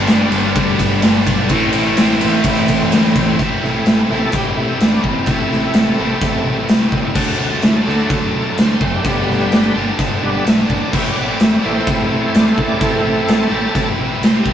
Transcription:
Already playing: distorted electric guitar G2 D4, overdriven electric guitar D3 G3, tonewheel organ G3 B3 D4 B4
0.07 fingered electric bass G1, distorted electric guitar D3 G3 B3, snare, ride, tambourine
0.11 distorted electric guitar D4
0.32 fingered electric bass G1, distorted electric guitar G3 B3 D4, ride, tambourine
0.54 fingered electric bass D2, distorted electric guitar D3 G3 B3 D4, kick, ride, tambourine
0.79 fingered electric bass G1, kick, snare, ride, tambourine
1.02 fingered electric bass G1, distorted electric guitar G2 D3 G3 B3, snare, ride, tambourine
1.07 distorted electric guitar D4
1.26 fingered electric bass B1, distorted electric guitar G3 B3 D4, kick, ride, tambourine
1.49 fingered electric bass A1, distorted electric guitar A2 E3 A3, tonewheel organ A3 C4 E4 C5, kick, ride, tambourine
1.53 distorted electric guitar C4 E4
1.73 ride
1.97 fingered electric bass A1, distorted electric guitar E3 A3 C4, snare, ride, tambourine
2.02 distorted electric guitar E4
2.21 distorted electric guitar A3 C4 E4, ride
2.25 fingered electric bass A1
2.44 fingered electric bass A1, distorted electric guitar E3 A3, kick, ride
2.49 distorted electric guitar C4 E4
2.68 fingered electric bass A1, kick, ride
2.92 fingered electric bass D2, distorted electric guitar A2 E3 A3 C4, snare, ride, tambourine
2.96 distorted electric guitar E4
3.15 fingered electric bass A1, distorted electric guitar C4 E4, kick, ride, tambourine
3.20 distorted electric guitar A3
3.39 fingered electric bass A1, distorted electric guitar A2 E3 A3 C4 E4, kick, closed hi-hat
3.63 fingered electric bass A1, tonewheel organ C3 E3 A3, snare
3.86 fingered electric bass A1, snare, closed hi-hat
4.11 fingered electric bass A1, distorted electric guitar A2 E3 A3 C4 E4, tonewheel organ C5, snare
4.26 tonewheel organ F#4 A4
4.32 fingered electric bass A1, tonewheel organ G4, kick, closed hi-hat
4.57 tonewheel organ C3 E3 A3
4.81 fingered electric bass A1, tonewheel organ D4, snare, closed hi-hat
5.04 fingered electric bass A1, kick
5.09 tonewheel organ C4
5.26 fingered electric bass A1, distorted electric guitar A2 E3 A3 C4, tonewheel organ E3, kick, closed hi-hat
5.30 tonewheel organ C3 A3, distorted electric guitar E4
5.51 fingered electric bass A1, snare
5.74 fingered electric bass A1, snare, closed hi-hat
5.98 fingered electric bass A1, distorted electric guitar A2 E3 A3 C4 E4
6.21 fingered electric bass A1, kick, closed hi-hat
6.46 fingered electric bass A1
6.69 fingered electric bass C2, snare, closed hi-hat
6.92 fingered electric bass C#2, kick
7.14 fingered electric bass D2, distorted electric guitar D3 F#3 A3 D4, kick, crash
7.39 fingered electric bass D2, snare
7.62 fingered electric bass D2, snare, closed hi-hat
7.68 tonewheel organ E4
7.73 tonewheel organ G#4 A4
7.86 fingered electric bass D2, tonewheel organ D3 F#3, distorted electric guitar D3 F#3 A3 D4, snare
7.90 tonewheel organ A3
8.10 fingered electric bass D2, kick, closed hi-hat
8.48 tonewheel organ A4
8.57 fingered electric bass D2, tonewheel organ C5, snare, closed hi-hat
8.73 tonewheel organ C5
8.81 fingered electric bass F#1, kick
8.95 tonewheel organ G4
9.05 fingered electric bass G1, distorted electric guitar G2 D3 G3 B3 D4, tonewheel organ D3 G3 B3, kick, closed hi-hat
9.27 fingered electric bass G1, tonewheel organ F#4, snare
9.31 tonewheel organ G4
9.52 fingered electric bass G1, snare, closed hi-hat
9.75 fingered electric bass G1, distorted electric guitar G2 D3 G3 B3 D4
9.98 fingered electric bass G1, kick, closed hi-hat
10.23 fingered electric bass G1, tonewheel organ D3 G3 B3
10.33 tonewheel organ D5
10.46 fingered electric bass B1, tonewheel organ E5, snare, closed hi-hat
10.63 tonewheel organ D5
10.70 fingered electric bass G1, kick
10.80 tonewheel organ D5
10.90 fingered electric bass A1, distorted electric guitar A2 E3 A3 C4, tonewheel organ E5, kick, crash
10.94 distorted electric guitar E4
11.11 tonewheel organ D5
11.17 fingered electric bass A1
11.24 tonewheel organ C#5
11.28 tonewheel organ D5
11.40 fingered electric bass A1, tonewheel organ E5, snare, closed hi-hat
11.59 distorted electric guitar E4, tonewheel organ D5
11.63 fingered electric bass A1, distorted electric guitar A2 E3 A3 C4, tonewheel organ E3 A3 C4
11.74 tonewheel organ C5 E5
11.87 fingered electric bass A1, kick, closed hi-hat
12.30 tonewheel organ C#5
12.35 fingered electric bass A1, tonewheel organ D5, snare, closed hi-hat
12.52 tonewheel organ E3 A4
12.56 fingered electric bass A1, tonewheel organ A3 C4, kick
12.67 tonewheel organ D5
12.79 fingered electric bass A1, distorted electric guitar A2 E3 A3 C4 E4, tonewheel organ E3 A3 C4 A4, kick, closed hi-hat
12.94 tonewheel organ G#4 A4
13.04 fingered electric bass A1
13.27 fingered electric bass A1, snare, closed hi-hat
13.50 fingered electric bass A1, distorted electric guitar A2 E3 A3 C4 E4
13.75 fingered electric bass A1, kick, closed hi-hat
13.98 fingered electric bass A1
14.20 fingered electric bass C2, tonewheel organ C5, snare, closed hi-hat
14.39 tonewheel organ G4
14.46 fingered electric bass C2, kick

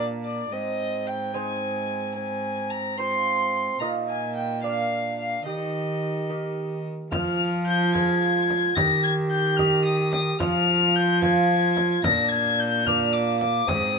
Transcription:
Already playing: lute A#2 D4 A#4, cello A#2, bassoon D4
0.24 violin D5
0.52 lute G#2, cello G#2, bassoon C4, violin D#5
1.07 violin G5
1.34 lute G#3 D#4 C5, bassoon C4, violin G#5
2.15 bassoon C4, violin G#5
2.70 violin A#5
2.98 bassoon C4, lute F4 C5, violin C6
3.80 cello A#2, lute A#2 A#3 F4 D#5, bassoon D#4, violin A#5
4.09 violin G#5
4.36 violin G5
4.63 lute A#3 F4 D5, bassoon D4, violin F5
5.18 violin F5
5.45 lute D#3, cello D#3, bassoon G4, violin D#5
6.29 lute A#3 G4 D#5
7.11 cello F3, lute F3, bassoon F4, violin F6, frame drum
7.67 violin G6
7.94 lute G#3 F4 C5, bassoon F4, violin G#6, frame drum
8.50 frame drum
8.75 lute D#3, cello D#3, bassoon G4, violin A#6, frame drum
9.04 violin G#6
9.30 violin G6
9.57 lute G4 D#5, violin F6, frame drum
9.85 violin D#6
10.13 violin D#6, frame drum
10.40 lute F3, cello F3, bassoon F4, violin F6, frame drum
10.96 violin G6
11.22 lute C4 F4 C5, bassoon F4, violin G#6, frame drum
11.77 frame drum
12.04 lute A#2, cello A#2, bassoon D4, violin A#6, frame drum
12.31 violin G#6
12.60 violin G6
12.85 lute A#3 F4 D5, bassoon D4, violin F6, frame drum
13.13 violin D6
13.40 violin D6, frame drum
13.67 cello G#2, lute G#2, bassoon C4, violin D#6, frame drum

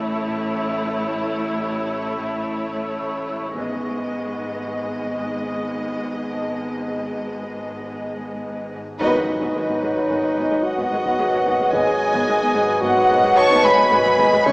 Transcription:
Already playing: synth drone A1, harp A2, cello section A2, viola section A3 E4, violin section C#5
0.01 harp A3
0.28 harp A2
0.55 harp A2
0.82 harp A2
1.09 harp A2
1.37 harp A2
1.65 harp A2
1.92 harp A3
2.19 harp A2
2.46 harp A2
2.73 harp A3
3.01 harp A2, vibraphone C#6
3.28 harp A2
3.55 double bass section G#1, synth drone G#1, cello section G#2, harp G#2, viola section G#3 B3, violin section D#5, taiko
3.83 harp G#2
4.10 harp G#2
4.37 harp G#2
4.65 harp G#3
4.92 harp G#2
5.19 harp G#2, vibraphone D#6
5.46 harp G#3
5.74 harp G#2
6.01 harp G#2
6.28 harp G#2, vibraphone A5
6.55 harp G#2
6.82 harp G#2
7.10 harp G#2
7.37 harp G#3
7.64 harp G#2
7.92 harp G#2
8.19 harp G#3
8.46 harp G#2
8.74 harp G#2
9.00 double bass section G#1, synth drone G#1, cello section G#2, harp G#2, french horn section F#3 B4, viola section B3 F#4, clarinet D#4, violin section B4 D#5, taiko, impact
9.14 cello section G#2, viola section G#3
9.28 harp G#3
9.41 cello section G#2, viola section B3, taiko
9.55 double bass section G#1, harp G#2, cello section G#2, viola section G#3
9.68 cello section G#2, viola section B3
9.82 double bass section G#1, harp G#2, cello section G#2, viola section G#3, vibraphone C#5
9.96 cello section G#2, viola section F#3
10.09 double bass section G#1, cello section G#2, harp G#3, viola section B3, taiko
10.23 cello section G#2, viola section G#3
10.37 double bass section G#1, cello section G#2, harp G#2, viola section B3
10.50 cello section G#2, viola section G#3
10.64 harp G#2, clarinet F#4, violin section D#5 F#5
10.78 cello section G#2, viola section B3, taiko
10.91 double bass section G#1, cello section G#2, harp G#2, viola section G#3
11.05 cello section G#2, viola section B3, taiko
11.18 double bass section G#1, cello section G#2, harp G#2, viola section G#3, vibraphone B4
11.32 cello section G#2, viola section F#3
11.46 double bass section G#1, cello section G#2, harp G#3, viola section B3, taiko
11.60 cello section G#2, viola section G#3
11.72 double bass section G#1, cello section G#2, harp G#2, viola section B3, clarinet G#4, violin section D#5 G#5, taiko
11.86 cello section G#2, viola section G#3
12.01 harp G#3
12.14 cello section G#2, viola section B3, taiko
12.28 double bass section G#1, cello section G#2, harp G#2, viola section G#3
12.41 cello section G#2, viola section B3
12.54 double bass section G#1, harp G#2, cello section G#2, viola section G#3
12.68 cello section G#2, viola section F#3
12.81 double bass section G#1, cello section G#2, harp G#3, viola section B3, clarinet F#4, violin section D#5 F#5, taiko
12.95 cello section G#2, viola section G#3
13.09 double bass section G#1, cello section G#2, harp G#2, viola section B3
13.23 cello section G#2, viola section G#3
13.36 harp G#2, clarinet C#5, violin section A5 C#6
13.50 cello section G#2, viola section B3, taiko
13.63 double bass section G#1, cello section G#2, harp G#2, viola section G#3, clarinet B4, violin section G#5 B5
13.77 cello section G#2, viola section B3, taiko
13.91 double bass section G#1, cello section G#2, harp G#2, viola section G#3
14.05 cello section G#2, viola section F#3
14.18 double bass section G#1, cello section G#2, harp G#3, viola section B3, taiko
14.32 cello section G#2, viola section G#3
14.45 synth drone G#1, double bass section C#2, cello section C#3, harp C#3, french horn section E3 G#4, viola section G#3 E4, clarinet C#5, violin section G#5 C#6, taiko

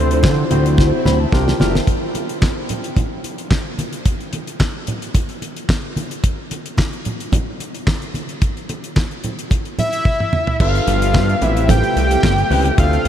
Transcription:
Already playing: analog synth bass D2, string machine C3 F3 D4, tine electric piano C4 E4 F4 A4, analog synth lead C5
0.11 closed hi-hat
0.23 analog synth bass D3, kick, snare, clap, high conga
0.51 analog synth bass D2, string machine F#3 C4 E4, tine electric piano C4 E4 F#4 C5, closed hi-hat, low conga
0.66 closed hi-hat
0.78 kick, snare, muted conga
1.05 analog synth bass D2, tine electric piano B5, snare, low conga
1.20 tine electric piano A5
1.32 analog synth bass C2, string machine D3 A#3 F4, tine electric piano D4 F4 G4 A#4 G5, kick, snare, high conga
1.48 snare
1.60 analog synth bass F#1, tine electric piano D4 F4 G4 A#4, snare, high conga
1.69 tine electric piano E5
1.75 snare
1.87 kick, closed hi-hat
2.15 closed hi-hat, muted conga
2.29 closed hi-hat
2.42 kick, snare, clap, high conga
2.69 closed hi-hat, low conga
2.84 closed hi-hat
2.96 kick, closed hi-hat, muted conga, low conga
3.24 closed hi-hat, muted conga
3.38 closed hi-hat
3.51 kick, snare, clap, high conga
3.79 closed hi-hat, high conga
3.93 closed hi-hat
4.05 kick, closed hi-hat
4.21 closed hi-hat
4.33 closed hi-hat, muted conga
4.47 closed hi-hat
4.60 kick, snare, clap, high conga
4.87 closed hi-hat, low conga
5.02 closed hi-hat
5.14 kick, closed hi-hat, muted conga
5.29 closed hi-hat
5.42 closed hi-hat, muted conga
5.56 closed hi-hat
5.69 kick, snare, clap, high conga
5.96 closed hi-hat, high conga
6.11 closed hi-hat
6.24 kick, closed hi-hat
6.51 closed hi-hat, muted conga
6.66 closed hi-hat
6.77 kick, snare, clap, high conga
6.93 closed hi-hat
7.05 closed hi-hat, low conga
7.20 closed hi-hat
7.32 kick, closed hi-hat, muted conga, low conga
7.60 closed hi-hat, muted conga
7.75 closed hi-hat
7.87 kick, snare, clap, high conga
8.02 closed hi-hat
8.14 closed hi-hat, high conga
8.29 closed hi-hat
8.42 kick, closed hi-hat
8.57 closed hi-hat
8.69 closed hi-hat, muted conga
8.84 closed hi-hat
8.96 kick, snare, clap, high conga
9.11 closed hi-hat
9.24 closed hi-hat, low conga
9.39 closed hi-hat
9.51 kick, closed hi-hat, muted conga
9.65 closed hi-hat
9.78 analog synth lead E5, closed hi-hat, low conga
9.93 closed hi-hat
10.05 kick, high tom, high conga
10.20 mid tom
10.33 mid tom, high conga
10.47 floor tom
10.60 analog synth bass G1, string machine F3 B3 G4, tine electric piano D4 F4 A4 B4, analog synth lead F5, kick, crash
10.75 closed hi-hat
10.87 analog synth bass G1, closed hi-hat, muted conga
11.02 closed hi-hat
11.14 analog synth bass G2, kick, snare, clap, high conga
11.29 closed hi-hat
11.41 analog synth bass A1, string machine C3 A3 G4, tine electric piano C4 E4 G4 B4, analog synth lead E5, closed hi-hat, low conga
11.57 closed hi-hat
11.69 analog synth lead G5, kick, closed hi-hat, muted conga, low conga
11.84 closed hi-hat
11.96 analog synth bass C2, closed hi-hat, muted conga
12.11 closed hi-hat
12.23 analog synth bass G1, kick, snare, clap, high conga
12.38 closed hi-hat
12.50 analog synth bass C#2, tine electric piano C4 E4 G4 B4, open hi-hat, high conga
12.65 closed hi-hat
12.78 analog synth bass D2, string machine C3 F3 D4, tine electric piano C4 D4 F4 A4, analog synth lead F5, kick, closed hi-hat
12.93 closed hi-hat
13.05 analog synth bass D2

